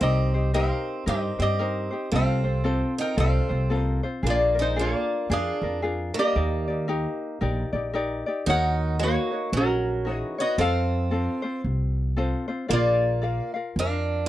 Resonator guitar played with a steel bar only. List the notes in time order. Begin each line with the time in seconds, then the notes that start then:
0.03 G4 D#5
0.55 A#4 F5
1.09 G4 D#5
1.42 G4 D#5
2.16 A4 F5
3.01 A#4 G5
3.20 A4 F5
3.79 D#5
4.28 F4 D5
4.61 D#4 C5
4.81 F4 D5
5.33 G#4 F5
6.19 G4 D#5
8.50 A#4 F#5
9.03 F#4 C#5
9.57 C#4 A#4
10.15 G#4
10.41 F#4 D#5
10.61 A4 F5
12.73 F4 D5
13.79 A#4 F5